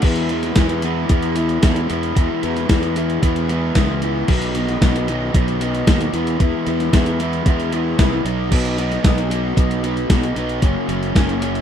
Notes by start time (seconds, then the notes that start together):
0.02 E2 E3 G#3 B3 E4, kick, crash
0.16 closed hi-hat
0.29 E3 G#3 B3 E4, closed hi-hat
0.43 snare, closed hi-hat
0.56 E2 E3 G#3 B3 E4, kick, snare, closed hi-hat
0.69 closed hi-hat
0.82 E3 G#3 B3 E4, closed hi-hat
1.09 E2 E3 G#3 B3 E4, kick, closed hi-hat
1.23 closed hi-hat
1.36 E3 G#3 B3 E4, closed hi-hat
1.49 closed hi-hat
1.62 E2 E3 G#3 B3 E4, kick, snare, closed hi-hat
1.76 closed hi-hat
1.89 E2 E3 G#3 B3 E4, closed hi-hat
2.03 closed hi-hat
2.15 E2 E3 G#3 B3 E4, kick, closed hi-hat
2.42 E2 E3 G#3 B3 E4, closed hi-hat
2.57 snare, closed hi-hat
2.68 E2 E3 G#3 B3 E4, kick, snare, closed hi-hat
2.83 closed hi-hat
2.95 E3 G#3 B3 E4, closed hi-hat
3.10 closed hi-hat
3.22 E2 E3 G#3 B3 E4, kick, closed hi-hat
3.36 closed hi-hat
3.49 E3 G#3 B3 E4, closed hi-hat
3.75 C#2 E3 G#3 B3 E4, kick, snare, closed hi-hat
4.02 E3 G#3 B3 E4, closed hi-hat
4.28 B1 B2 D#3 F#3 B3 D#4, kick, crash
4.42 closed hi-hat
4.55 B2 D#3 F#3 B3 D#4, closed hi-hat
4.69 snare, closed hi-hat
4.82 B1 B2 D#3 F#3 B3 D#4, kick, snare, closed hi-hat
4.96 closed hi-hat
5.08 B2 D#3 F#3 B3 D#4, closed hi-hat
5.34 B1 B2 D#3 F#3 B3 D#4, kick, closed hi-hat
5.48 closed hi-hat
5.60 B2 D#3 F#3 B3 D#4, closed hi-hat
5.75 closed hi-hat
5.86 D#2 B2 D#3 F#3 B3 D#4, kick, snare, closed hi-hat
6.01 closed hi-hat
6.12 E2 E3 G#3 B3 E4, closed hi-hat
6.27 closed hi-hat
6.39 E2 E3 G#3 B3 E4, kick, closed hi-hat
6.66 E2 E3 G#3 B3 E4, closed hi-hat
6.80 snare, closed hi-hat
6.93 E2 E3 G#3 B3 E4, kick, snare, closed hi-hat
7.06 closed hi-hat
7.19 E3 G#3 B3 E4, closed hi-hat
7.33 closed hi-hat
7.46 E2 E3 G#3 B3 E4, kick, closed hi-hat
7.60 closed hi-hat
7.72 E3 G#3 B3 E4, closed hi-hat
7.98 C2 E3 G#3 B3 E4, kick, snare, closed hi-hat
8.24 B1 B2 F#3 B3 D#4, closed hi-hat
8.51 B2 F#3 B3 D#4, kick, crash
8.65 closed hi-hat
8.78 B2 F#3 B3 D#4, closed hi-hat
8.92 snare, closed hi-hat
9.03 B1 B2 F#3 B3 D#4, kick, snare, closed hi-hat
9.18 closed hi-hat
9.30 B2 F#3 B3 D#4, closed hi-hat
9.56 B1 B2 F#3 B3 D#4, kick, closed hi-hat
9.71 closed hi-hat
9.83 B2 F#3 B3 D#4, closed hi-hat
9.97 closed hi-hat
10.10 B1 B2 F#3 B3 D#4, kick, snare, closed hi-hat
10.23 closed hi-hat
10.35 B1 B2 F#3 B3 D#4, closed hi-hat
10.49 closed hi-hat
10.61 F#1 F#2 C#3 F#3 A#3 C#4, kick, closed hi-hat
10.87 F#1 F#2 C#3 F#3 A#3 C#4, closed hi-hat
11.03 closed hi-hat
11.15 F#1 F#2 C#3 F#3 A#3 C#4, kick, snare, closed hi-hat
11.29 closed hi-hat
11.40 F#2 C#3 F#3 A#3 C#4, closed hi-hat
11.55 closed hi-hat